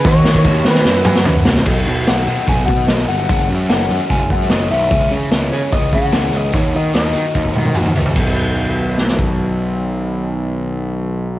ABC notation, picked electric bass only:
X:1
M:4/4
L:1/16
Q:1/4=147
K:B
V:1 name="Picked electric bass" clef=bass
D,,2 D,2 D,,2 D,2 F,,2 F,2 F,,2 =C,,2 | B,,,2 B,,2 B,,,2 B,, z B,,,2 B,,2 B,,,2 =G,,,2 | F,,,2 F,,2 F,,,2 F,, z F,,,2 F,,2 F,,,2 B,,,2 | C,,2 C,2 C,,2 C, z C,,2 C,2 C,,2 C,,2 |
D,,2 D,2 D,,2 D, z D,,2 D,2 D,,2 C,,2 | B,,,16- | B,,,16 |]